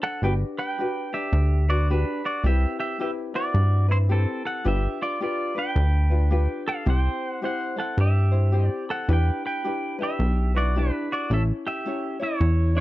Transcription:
0.00 0.24 D4 medium
0.00 0.24 F#4 medium
0.00 0.22 A4 medium
0.00 0.23 C5 medium
0.00 0.24 F#5 medium
0.22 0.44 G1 loud
0.22 0.78 D4 medium
0.22 0.78 F#4 medium
0.22 0.78 G4 medium
0.22 0.33 B4 medium
0.22 0.80 B4 medium
0.22 0.33 G5 loud
0.59 1.09 B4 medium
0.59 1.15 G5 loud
0.78 1.12 D4 medium
0.78 1.13 F#4 medium
0.78 1.12 G4 medium
0.78 1.11 B4 medium
1.12 1.68 D4 soft
1.12 1.64 G4 medium
1.12 1.69 B4 medium
1.12 1.70 E5 loud
1.33 2.05 D2 loud
1.69 1.89 D4 soft
1.69 1.89 F#4 soft
1.69 1.88 F#4 medium
1.69 1.89 B4 medium
1.69 1.90 D5 medium
1.90 2.45 D4 medium
1.90 2.21 D4 medium
1.90 2.45 F#4 medium
1.90 2.45 G4 medium
1.90 2.25 B4 medium
1.90 2.46 B4 medium
2.25 2.44 F#4 medium
2.25 2.46 D5 medium
2.44 2.66 C2 loud
2.44 2.98 C4 medium
2.44 2.99 E4 medium
2.44 2.99 G4 medium
2.44 2.77 G4 medium
2.44 3.01 B4 medium
2.44 2.79 E5 loud
2.80 2.98 G4 medium
2.80 3.00 E5 loud
2.99 3.33 C4 medium
2.99 3.34 E4 medium
2.99 3.33 G4 medium
2.99 3.10 G4 medium
2.99 3.33 B4 medium
2.99 3.10 E5 loud
3.34 3.89 C4 soft
3.34 3.88 E4 soft
3.34 3.86 F#4 medium
3.34 3.88 B4 medium
3.34 3.86 D5 loud
3.54 4.26 G2 loud
3.88 4.09 C4 soft
3.88 4.10 E4 soft
3.88 3.96 E4 medium
3.88 4.09 B4 medium
3.88 3.97 C5 medium
4.09 4.65 C4 medium
4.09 4.42 C4 medium
4.09 4.65 E4 medium
4.09 4.64 G4 medium
4.09 4.44 A4 medium
4.09 4.65 B4 medium
4.45 4.64 A4 medium
4.45 4.67 F#5 loud
4.64 4.88 G1 loud
4.64 5.19 D4 medium
4.64 5.20 F4 medium
4.64 5.20 G4 medium
4.64 4.98 G4 medium
4.64 5.21 B4 medium
4.64 5.02 E5 loud
5.02 5.20 F4 medium
5.02 5.21 D5 loud
5.21 5.55 D4 medium
5.21 5.54 F4 medium
5.21 5.53 F4 medium
5.21 5.55 G4 medium
5.21 5.54 B4 medium
5.21 5.57 D5 medium
5.55 6.10 D4 soft
5.55 6.10 F4 medium
5.55 6.09 B4 medium
5.55 6.63 B4 medium
5.55 6.71 G5 loud
5.76 6.48 D2 loud
6.10 6.29 D4 soft
6.10 6.30 F4 soft
6.10 6.31 B4 medium
6.31 6.86 D4 medium
6.31 6.87 F4 medium
6.31 6.85 G4 medium
6.31 6.87 B4 medium
6.68 6.86 A4 medium
6.68 6.89 F5 medium
6.86 7.09 C2 loud
6.86 7.41 C4 medium
6.86 7.43 E4 medium
6.86 7.41 G4 medium
6.86 7.43 C5 medium
6.86 7.39 C5 medium
6.90 7.30 G5 loud
7.30 7.45 F#5 loud
7.42 7.76 C4 medium
7.42 7.76 E4 medium
7.42 7.76 G4 medium
7.42 7.75 C5 medium
7.42 7.76 F#5 medium
7.76 8.32 C4 soft
7.76 8.32 E4 soft
7.76 7.97 A4 medium
7.76 8.30 C5 soft
7.76 8.00 F#5 medium
7.97 8.69 G2 loud
7.97 8.84 G4 medium
7.97 8.66 E5 medium
8.32 8.52 C4 soft
8.32 8.52 E4 soft
8.32 8.53 C5 medium
8.52 9.08 C4 medium
8.52 9.09 E4 medium
8.52 9.08 G4 medium
8.52 9.09 C5 medium
8.66 8.91 D5 medium
8.90 9.08 A4 medium
8.90 9.11 F#5 medium
9.09 9.31 E2 loud
9.09 9.63 D4 medium
9.09 9.65 E4 medium
9.09 9.63 G4 medium
9.09 9.64 B4 medium
9.09 9.42 B4 medium
9.13 9.45 G5 loud
9.46 9.96 B4 medium
9.46 9.96 G5 loud
9.64 9.98 D4 medium
9.64 9.99 E4 medium
9.64 9.98 G4 medium
9.64 9.97 B4 medium
9.99 10.55 D4 soft
9.99 10.55 E4 medium
9.99 10.52 G4 medium
9.99 10.53 B4 medium
10.03 10.58 E5 loud
10.19 10.91 B1 loud
10.54 10.75 D4 soft
10.54 10.76 E4 soft
10.54 10.75 F#4 medium
10.54 10.75 B4 soft
10.54 10.77 D5 medium
10.76 11.30 D4 medium
10.76 11.08 D4 medium
10.76 11.31 E4 medium
10.76 11.30 G4 medium
10.76 11.31 B4 medium
10.76 11.12 B4 medium
11.12 11.30 F#4 medium
11.12 11.33 D5 medium
11.30 11.52 A1 loud
11.30 11.85 C#4 medium
11.30 11.86 E4 medium
11.30 11.85 A4 medium
11.30 11.42 A4 medium
11.30 11.86 C#5 medium
11.30 11.43 E5 loud
11.67 12.17 G4 medium
11.67 12.23 E5 loud
11.86 12.20 C#4 medium
11.86 12.20 E4 medium
11.86 12.20 A4 medium
11.86 12.18 C#5 medium
12.20 12.76 C#4 soft
12.20 12.75 E4 medium
12.20 12.73 E4 medium
12.20 12.74 C#5 medium
12.20 12.78 C#5 medium
12.41 12.80 E2 loud
12.75 12.80 C#4 soft
12.75 12.80 D4 medium
12.75 12.80 E4 soft
12.75 12.80 C#5 medium

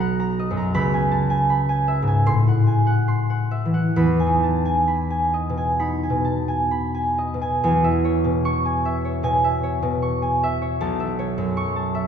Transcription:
0.00 0.77 B1 medium
0.00 0.38 D#5 medium
0.00 0.77 F#5 medium
0.00 0.18 A#5 medium
0.20 0.56 A#5 medium
0.39 0.78 D#5 medium
0.51 0.78 F#2 soft
0.57 0.78 A#5 medium
0.74 2.29 C#2 medium
0.74 1.49 B5 medium
0.94 1.29 G#5 medium
1.11 1.44 A5 soft
1.30 1.68 G#5 medium
1.50 2.29 B5 medium
1.69 2.06 G#5 soft
1.88 3.50 E5 medium
2.02 2.30 G#2 soft
2.07 2.29 G#5 soft
2.26 3.99 A2 medium
2.26 3.07 C6 medium
2.48 2.86 F#5 soft
2.67 3.01 G#5 soft
2.87 3.29 F#5 soft
3.08 3.99 C6 soft
3.30 3.73 F#5 soft
3.51 7.41 E5 soft
3.65 3.99 E3 soft
3.74 4.00 F#5 soft
3.96 7.62 E2 soft
3.96 4.86 B5 medium
4.20 4.64 G#5 soft
4.27 5.79 D#4 soft
4.43 4.82 A5 soft
4.65 5.09 G#5 soft
4.88 5.78 B5 soft
5.10 5.56 G#5 soft
5.34 7.17 D#5 soft
5.49 6.09 B2 soft
5.57 6.02 G#5 soft
5.80 7.66 D#4 soft
5.80 6.70 B5 soft
6.03 6.47 G#5 soft
6.10 7.33 B2 soft
6.25 6.63 A5 soft
6.48 6.93 G#5 soft
6.71 10.61 B5 soft
6.95 7.40 G#5 soft
7.18 7.66 D#5 soft
7.34 7.66 B2 soft
7.42 7.63 G#5 soft
7.64 10.85 E2 medium
7.64 8.64 G#5 soft
7.84 8.84 E5 soft
8.05 9.04 C#5 soft
8.24 9.22 B2 soft
8.45 10.01 C#6 medium
8.65 9.23 G#5 soft
8.85 9.43 E5 soft
9.05 9.62 C#5 soft
9.23 9.81 B2 soft
9.23 10.21 G#5 medium
9.44 10.42 E5 soft
9.63 10.61 C#5 soft
9.82 10.84 B2 soft
10.02 11.56 C#6 soft
10.22 10.84 G#5 soft
10.43 10.99 E5 soft
10.62 11.18 C#5 soft
10.81 12.07 B1 medium
10.81 11.75 A5 medium
11.00 11.93 E5 medium
11.19 12.07 C#5 soft
11.38 12.07 F#2 soft
11.57 12.07 C#6 medium
11.76 12.07 A5 soft
11.95 12.07 E5 soft

